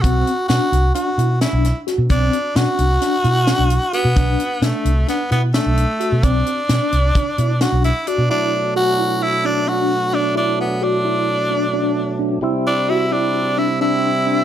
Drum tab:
HH |xxxxxxxxx|xxxxxxxxx|xxxxxxxxx|xxxxxxxxx|
SD |--o---ooo|--o-o-o--|--o-o-o--|--o---o--|
BD |o--------|o--------|o--------|o---o----|

HH |---------|---------|---------|
SD |---------|---------|---------|
BD |---------|---------|---------|